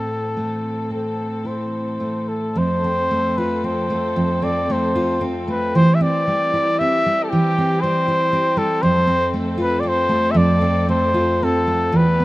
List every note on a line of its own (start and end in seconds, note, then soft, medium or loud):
0.00 2.56 A2 medium
0.00 2.53 E3 soft
0.00 0.90 C4 soft
0.00 2.53 C4 soft
0.00 1.44 E4 soft
0.00 0.91 A4 medium
0.00 2.53 A4 medium
0.37 2.00 A3 soft
0.91 2.84 C4 soft
0.91 1.48 A4 soft
1.45 2.66 E4 soft
1.45 2.30 C5 medium
2.00 3.11 A3 soft
2.29 2.60 A4 medium
2.56 4.15 F2 medium
2.56 5.73 F3 medium
2.56 8.80 C4 medium
2.56 5.73 A4 medium
2.56 3.39 C5 medium
2.84 3.64 C4 soft
3.11 3.89 A3 soft
3.38 4.94 F4 soft
3.38 3.67 B4 medium
3.64 4.42 C4 soft
3.64 4.45 C5 medium
3.90 4.68 A3 soft
4.16 5.85 F2 medium
4.42 5.20 C4 medium
4.42 4.74 D5 medium
4.70 5.47 A3 medium
4.70 5.24 C5 medium
4.95 5.85 F4 medium
5.21 6.00 C4 medium
5.48 5.85 A3 soft
5.48 5.77 B4 medium
5.75 7.30 E3 medium
5.75 8.80 E3 medium
5.75 8.80 G4 medium
5.75 5.96 C5 medium
5.95 6.04 E5 medium
6.01 6.80 C4 medium
6.01 6.81 D5 medium
6.27 7.05 G3 soft
6.53 8.06 E4 medium
6.79 7.58 C4 medium
6.79 7.25 E5 medium
7.06 7.81 G3 medium
7.24 7.31 A4 medium
7.30 8.95 E3 medium
7.30 7.83 G4 medium
7.58 8.32 C4 medium
7.81 8.56 G3 medium
7.81 8.59 C5 medium
8.08 8.94 E4 medium
8.33 9.07 C4 medium
8.57 8.93 G3 medium
8.57 8.84 A4 medium
8.82 10.33 F2 medium
8.82 11.91 F3 medium
8.82 11.92 C4 medium
8.82 11.91 A4 medium
8.82 9.34 C5 loud
9.07 9.82 C4 medium
9.34 10.08 A3 soft
9.58 11.13 F4 medium
9.62 9.82 B4 medium
9.80 10.60 C4 medium
9.80 9.90 D5 medium
9.88 10.33 C5 medium
10.09 10.87 A3 medium
10.31 11.92 F2 medium
10.31 10.39 E5 medium
10.37 10.89 D5 medium
10.61 11.40 C4 medium
10.89 11.66 A3 medium
10.89 11.45 C5 medium
11.14 12.04 F4 medium
11.43 12.05 C4 medium
11.43 11.98 A4 medium
11.67 12.04 A3 soft
11.92 12.25 E2 medium
11.92 12.25 E3 medium
11.92 12.25 B3 medium
11.92 12.25 G4 medium
11.97 12.25 B4 medium
12.20 12.25 B3 medium